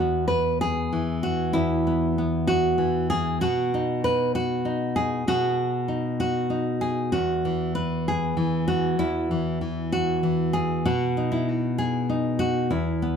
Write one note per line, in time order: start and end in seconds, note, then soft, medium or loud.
0.00 1.54 E2 medium
0.00 1.86 B3 soft
0.00 0.27 F#4 medium
0.28 0.60 B4 medium
0.61 1.23 G#4 medium
0.93 2.77 E3 medium
1.23 2.17 F#4 medium
1.53 3.41 E2 medium
1.53 3.09 E4 medium
1.87 2.18 B3 soft
2.18 3.74 B3 soft
2.47 3.09 F#4 medium
2.78 3.40 E3 medium
3.10 3.41 G#4 medium
3.41 5.26 B2 medium
3.41 4.03 F#4 medium
3.74 4.64 D#4 soft
4.04 4.34 B4 medium
4.35 5.26 F#4 medium
4.65 5.22 D#4 medium
4.96 5.88 G#4 medium
5.28 7.13 B2 medium
5.28 6.19 F#4 medium
5.88 6.49 D#4 soft
6.20 7.11 F#4 medium
6.50 7.09 D#4 medium
6.81 7.12 G#4 medium
7.12 8.98 E2 medium
7.12 7.75 F#4 medium
7.45 8.36 E3 soft
7.75 8.67 B4 medium
8.08 8.99 G#4 medium
8.37 9.30 E3 medium
8.68 9.61 F#4 medium
8.99 10.85 E2 medium
8.99 10.53 E4 medium
9.31 9.60 E3 soft
9.61 10.22 E3 soft
9.92 10.84 F#4 medium
10.23 10.85 E3 medium
10.53 10.85 G#4 medium
10.85 12.70 B2 medium
10.85 11.47 F#4 medium
11.17 12.08 D#4 soft
11.32 11.47 E4 medium
11.49 12.38 F#4 medium
11.78 12.70 G#4 medium
12.09 12.67 D#4 medium
12.39 12.70 F#4 medium
12.71 13.16 E2 medium
12.71 13.16 E4 medium
13.02 13.16 B3 soft